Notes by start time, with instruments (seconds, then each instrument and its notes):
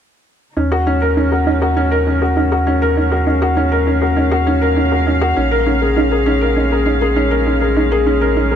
0.56 sub bass D#2, string section C#3 F#3 A#3 D#4, felt piano C#4, synth arpeggio sound D#4
0.72 felt piano F#4, synth arpeggio sound A#4
0.87 felt piano C#4, synth arpeggio sound D#4
1.02 felt piano A#4
1.17 felt piano C#4, synth arpeggio sound D#4
1.32 felt piano F#4, synth arpeggio sound A#4
1.47 felt piano C#4, synth arpeggio sound D#4
1.62 felt piano F#4, synth arpeggio sound A#4
1.77 felt piano C#4, synth arpeggio sound D#4
1.92 felt piano A#4
2.07 felt piano C#4, synth arpeggio sound D#4
2.22 felt piano F#4, synth arpeggio sound A#4
2.37 felt piano C#4, synth arpeggio sound D#4
2.52 felt piano F#4, synth arpeggio sound A#4
2.67 felt piano C#4, synth arpeggio sound D#4
2.82 felt piano A#4
2.97 felt piano C#4, synth arpeggio sound D#4, string section F5
3.12 felt piano F#4, synth arpeggio sound A#4
3.27 felt piano C#4, synth arpeggio sound D#4
3.42 felt piano F#4, synth arpeggio sound A#4
3.57 felt piano C#4, synth arpeggio sound D#4
3.72 felt piano A#4
3.87 felt piano C#4, synth arpeggio sound D#4
4.02 felt piano F#4, synth arpeggio sound A#4
4.17 felt piano C#4, synth arpeggio sound D#4
4.31 felt piano F#4, synth arpeggio sound A#4
4.47 felt piano C#4, synth arpeggio sound D#4
4.62 felt piano A#4
4.76 felt piano C#4, synth arpeggio sound D#4
4.92 felt piano F#4, synth arpeggio sound A#4
5.06 felt piano C#4, synth arpeggio sound D#4
5.21 felt piano F#4, synth arpeggio sound A#4
5.36 sub bass A#1, string section G#3, felt piano C#4, synth arpeggio sound D#4
5.51 felt piano A#4
5.66 felt piano C#4, synth arpeggio sound D#4
5.82 felt piano G#4, synth arpeggio sound A#4
5.96 felt piano C#4, synth arpeggio sound D#4
6.11 felt piano G#4, synth arpeggio sound A#4
6.26 felt piano C#4, synth arpeggio sound D#4
6.41 felt piano A#4
6.56 felt piano C#4, synth arpeggio sound D#4
6.71 felt piano G#4, synth arpeggio sound A#4
6.86 felt piano C#4, synth arpeggio sound D#4
7.01 felt piano G#4, synth arpeggio sound A#4
7.16 felt piano C#4, synth arpeggio sound D#4
7.31 felt piano A#4
7.46 felt piano C#4, synth arpeggio sound D#4
7.61 felt piano G#4, synth arpeggio sound A#4
7.76 felt piano C#4, synth arpeggio sound D#4
7.92 felt piano G#4, synth arpeggio sound A#4
8.06 felt piano C#4, synth arpeggio sound D#4
8.21 felt piano A#4
8.37 felt piano C#4, synth arpeggio sound D#4
8.51 felt piano G#4, synth arpeggio sound A#4